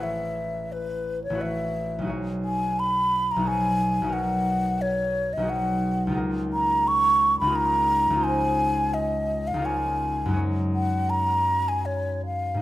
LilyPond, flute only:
\new Staff \with { instrumentName = "Flute" } { \time 3/4 \key b \minor \tempo 4 = 87 e''4 b'8. cis''16 e''4 | r8 gis''8 b''8. bes''16 gis''4 | fis''4 cis''8. dis''16 fis''4 | \key des \major r8 bes''8 des'''8. ces'''16 bes''4 |
aes''4 ees''8. f''16 aes''4 | r8 ges''8 bes''8. aes''16 des''8 f''8 | }